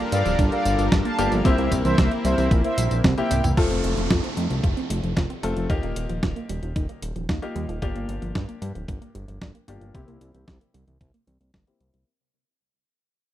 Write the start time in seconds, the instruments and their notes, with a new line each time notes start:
Already playing: analog synth pad G3 D4 F4 A4 A#4, grand piano A#3 D4 F4 G4
0.12 analog synth bass G2, synth arpeggio sound G3, analog polysynth D5 F5, closed hi-hat, tambourine
0.26 analog synth bass D1, synth arpeggio sound F3, closed hi-hat, tambourine
0.39 analog synth bass G1, synth arpeggio sound D4, kick, closed hi-hat, tambourine
0.52 synth arpeggio sound A#3, analog polysynth D5 F5, closed hi-hat
0.65 analog synth bass G1, synth arpeggio sound G3, closed hi-hat, tambourine
0.79 analog synth bass G1, synth arpeggio sound F3, closed hi-hat, tambourine
0.92 analog synth bass G1, synth arpeggio sound D4, kick, snare, closed hi-hat, tambourine
1.05 synth arpeggio sound A#3, analog polysynth F5 A5, closed hi-hat
1.18 analog synth bass G1, synth arpeggio sound G3, grand piano A#3 D4 F4 G4, closed hi-hat, tambourine
1.32 analog synth bass G1, synth arpeggio sound F3, closed hi-hat, tambourine
1.45 analog synth bass C2, analog synth pad A#3 C4 E4, grand piano A#3 C4 E4 G4, synth arpeggio sound C4, analog polysynth C5 E5, kick, closed hi-hat, tambourine
1.58 analog synth bass C2, synth arpeggio sound A#3, closed hi-hat
1.72 analog synth bass C2, synth arpeggio sound G3, kick, closed hi-hat, tambourine
1.85 analog synth bass C2, synth arpeggio sound E3, analog polysynth C5 E5, closed hi-hat, tambourine
1.98 analog synth bass C2, synth arpeggio sound C4, kick, snare, closed hi-hat, tambourine
2.11 synth arpeggio sound A#3, closed hi-hat
2.25 analog synth bass C2, synth arpeggio sound G3, analog polysynth C5 E5, closed hi-hat, tambourine
2.38 analog synth bass C2, synth arpeggio sound E3, closed hi-hat, tambourine
2.51 analog synth bass A#1, synth arpeggio sound C4, kick, closed hi-hat, tambourine
2.64 synth arpeggio sound A#3, analog polysynth C5 E5, closed hi-hat
2.78 analog synth bass A#1, synth arpeggio sound G3, closed hi-hat, tambourine
2.91 analog synth bass A#1, synth arpeggio sound E3, closed hi-hat, tambourine
3.04 analog synth bass C2, synth arpeggio sound C4, kick, snare, closed hi-hat, tambourine
3.18 synth arpeggio sound A#3, grand piano A#3 C4 E4 G4, analog polysynth E5 G5, closed hi-hat, high tom
3.31 analog synth bass C2, synth arpeggio sound G3, closed hi-hat, mid tom, tambourine
3.44 analog synth bass C2, synth arpeggio sound E3, closed hi-hat, mid tom, tambourine
3.57 analog synth bass F1, grand piano A3 C4 F4 A4, synth arpeggio sound F4, kick, closed hi-hat, downlifter
3.71 analog synth bass F1, synth arpeggio sound C4, closed hi-hat
3.84 analog synth bass F1, synth arpeggio sound A3, closed hi-hat
3.97 analog synth bass F1, synth arpeggio sound F3, closed hi-hat
4.10 analog synth bass F2, synth arpeggio sound F4, kick, snare, closed hi-hat
4.24 synth arpeggio sound C4, closed hi-hat
4.37 analog synth bass F2, synth arpeggio sound A3, closed hi-hat
4.50 analog synth bass C2, synth arpeggio sound F3, closed hi-hat
4.64 analog synth bass F1, synth arpeggio sound F4, kick, closed hi-hat
4.77 synth arpeggio sound C4, closed hi-hat
4.90 analog synth bass F1, synth arpeggio sound A3, closed hi-hat
5.03 analog synth bass F1, synth arpeggio sound F3, closed hi-hat
5.17 analog synth bass F1, synth arpeggio sound F4, kick, snare, closed hi-hat
5.30 synth arpeggio sound C4, closed hi-hat
5.43 analog synth bass F1, grand piano A3 C4 F4 A4, synth arpeggio sound A3, closed hi-hat
5.56 analog synth bass F1, synth arpeggio sound F3, closed hi-hat
5.70 analog synth bass D#2, grand piano A#3 D#4 F4 G4, synth arpeggio sound D#4, kick, closed hi-hat
5.83 analog synth bass D#1, synth arpeggio sound A#3, closed hi-hat
5.96 analog synth bass D#1, synth arpeggio sound G3, closed hi-hat
6.09 analog synth bass D#1, synth arpeggio sound F3, closed hi-hat
6.23 analog synth bass D#1, synth arpeggio sound D#4, kick, snare, closed hi-hat
6.36 synth arpeggio sound A#3, closed hi-hat
6.49 analog synth bass D#1, synth arpeggio sound G3, closed hi-hat
6.63 analog synth bass D#1, synth arpeggio sound F3, closed hi-hat
6.76 analog synth bass D#1, synth arpeggio sound D#4, kick, closed hi-hat
6.89 synth arpeggio sound A#3, closed hi-hat
7.02 analog synth bass D#1, synth arpeggio sound G3, closed hi-hat
7.16 analog synth bass D#1, synth arpeggio sound F3, closed hi-hat
7.29 analog synth bass D#2, synth arpeggio sound D#4, kick, snare, closed hi-hat
7.42 grand piano A#3 D#4 F4 G4, synth arpeggio sound A#3, closed hi-hat
7.55 analog synth bass D#2, synth arpeggio sound G3, closed hi-hat
7.69 analog synth bass D#1, synth arpeggio sound F3, closed hi-hat
7.82 analog synth bass G1, grand piano A#3 D4 F4 G4, synth arpeggio sound D4, kick, closed hi-hat
7.95 analog synth bass G1, synth arpeggio sound A#3, closed hi-hat
8.09 analog synth bass G1, synth arpeggio sound G3, closed hi-hat
8.22 analog synth bass G1, synth arpeggio sound F3, closed hi-hat
8.35 analog synth bass G2, synth arpeggio sound D4, kick, snare, closed hi-hat
8.49 synth arpeggio sound A#3, closed hi-hat
8.62 analog synth bass G2, synth arpeggio sound G3, closed hi-hat
8.75 analog synth bass D1, synth arpeggio sound F3, closed hi-hat
8.88 analog synth bass G1, synth arpeggio sound D4, kick, closed hi-hat
9.02 synth arpeggio sound A#3, closed hi-hat
9.15 analog synth bass G1, synth arpeggio sound G3, closed hi-hat
9.28 analog synth bass G1, synth arpeggio sound F3, closed hi-hat
9.41 analog synth bass G1, synth arpeggio sound D4, kick, snare, closed hi-hat
9.55 synth arpeggio sound A#3, closed hi-hat
9.68 analog synth bass G1, synth arpeggio sound G3, grand piano A#3 D4 F4 G4, closed hi-hat
9.81 analog synth bass G1, synth arpeggio sound F3, closed hi-hat
9.95 analog synth bass C2, grand piano A#3 C4 E4 G4, synth arpeggio sound C4, kick, closed hi-hat
10.08 analog synth bass C2, synth arpeggio sound A#3, closed hi-hat
10.21 analog synth bass C2, synth arpeggio sound G3, closed hi-hat
10.34 analog synth bass C2, synth arpeggio sound E3, closed hi-hat
10.48 analog synth bass C2, synth arpeggio sound C4, kick, snare, closed hi-hat
10.61 synth arpeggio sound A#3, closed hi-hat
10.74 analog synth bass C2, synth arpeggio sound G3, closed hi-hat
10.87 analog synth bass C2, synth arpeggio sound E3, closed hi-hat
11.01 analog synth bass C2, synth arpeggio sound C4, kick, closed hi-hat
11.14 synth arpeggio sound A#3, closed hi-hat
11.27 analog synth bass C2, synth arpeggio sound E3, closed hi-hat
11.41 analog synth bass C2, synth arpeggio sound A#3, closed hi-hat
11.54 analog synth bass G1, synth arpeggio sound A#3, kick, snare, closed hi-hat
11.67 synth arpeggio sound E3, grand piano A#3 C4 E4 G4, closed hi-hat
11.80 analog synth bass C2, synth arpeggio sound G3, closed hi-hat
11.94 analog synth bass C2, synth arpeggio sound G3, closed hi-hat